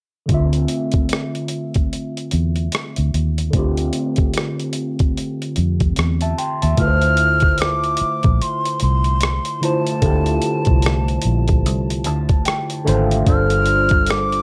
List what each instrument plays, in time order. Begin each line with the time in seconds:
0.26 tine electric piano D3 A3, kick, closed hi-hat
0.30 fingered electric bass D2, tine electric piano C4 F4
0.34 tine electric piano E5
0.53 closed hi-hat
0.68 closed hi-hat
0.92 kick, closed hi-hat
1.09 cross-stick, closed hi-hat
1.35 closed hi-hat
1.48 closed hi-hat
1.74 kick, closed hi-hat
1.93 closed hi-hat
2.17 closed hi-hat
2.31 fingered electric bass E2, closed hi-hat
2.56 closed hi-hat
2.72 cross-stick, closed hi-hat
2.96 fingered electric bass D2, closed hi-hat
3.14 fingered electric bass D#2, closed hi-hat
3.38 closed hi-hat
3.50 tine electric piano D3 A3 C4, kick, closed hi-hat
3.54 fingered electric bass D2, tine electric piano F4 G4
3.77 closed hi-hat
3.93 closed hi-hat
4.16 kick, closed hi-hat
4.34 closed hi-hat
4.38 cross-stick
4.60 closed hi-hat
4.73 closed hi-hat
4.99 kick, closed hi-hat
5.17 closed hi-hat
5.42 closed hi-hat
5.56 fingered electric bass F2, closed hi-hat
5.80 kick, closed hi-hat
5.96 fingered electric bass E2, cross-stick, closed hi-hat
6.21 tine electric piano E5 A5, closed hi-hat
6.38 tine electric piano G5 C6, closed hi-hat
6.62 fingered electric bass D#2, tine electric piano E5 A5, closed hi-hat
6.77 fingered electric bass D2, tine electric piano D3 A3 E4 F4, flute F6, kick, closed hi-hat
6.81 tine electric piano B4
6.87 tine electric piano C5
7.02 closed hi-hat
7.17 closed hi-hat
7.40 kick, closed hi-hat
7.58 flute D6, cross-stick, closed hi-hat
7.84 closed hi-hat
7.97 closed hi-hat
8.01 muted fingered electric bass stroke
8.23 fingered electric bass A#1, kick, closed hi-hat
8.42 flute C6, closed hi-hat
8.65 closed hi-hat
8.80 fingered electric bass C2, flute C6, closed hi-hat
9.04 closed hi-hat
9.21 cross-stick, closed hi-hat
9.45 closed hi-hat
9.61 tine electric piano D3 A3 E4 F4, flute A5, closed hi-hat
9.65 tine electric piano C5
9.87 closed hi-hat
10.01 fingered electric bass D2, tine electric piano D3 A3 E4 F4 G4, kick, closed hi-hat
10.26 closed hi-hat
10.42 closed hi-hat
10.65 fingered electric bass C2, kick, closed hi-hat
10.82 cross-stick, closed hi-hat
11.08 closed hi-hat
11.22 fingered electric bass A#1, closed hi-hat
11.48 kick, closed hi-hat
11.66 fingered electric bass C2, closed hi-hat
11.90 closed hi-hat
12.04 fingered electric bass D2, tine electric piano A5, closed hi-hat
12.29 kick, closed hi-hat
12.45 tine electric piano G5, cross-stick, closed hi-hat
12.70 closed hi-hat
12.85 fingered electric bass G#1, tine electric piano D3 A3 F4 E5 F5, closed hi-hat
12.89 tine electric piano C5
13.11 closed hi-hat
13.25 fingered electric bass G1, tine electric piano G3 D4 F4 A4, flute F6, kick, closed hi-hat
13.29 tine electric piano C5
13.50 closed hi-hat
13.66 closed hi-hat
13.89 kick, closed hi-hat
14.07 flute D6, cross-stick, closed hi-hat
14.32 closed hi-hat